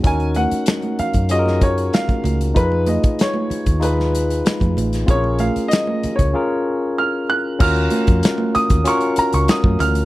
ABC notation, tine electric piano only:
X:1
M:4/4
L:1/8
Q:1/4=95
K:Ebm
V:1 name="Tine electric piano"
[DEGB]4 [DFGAB]4 | [EFABc]4 [EFAc]4 | [=CDFAB]4 [DFAB]4 | [DFGB]4 [DFGB]4 |]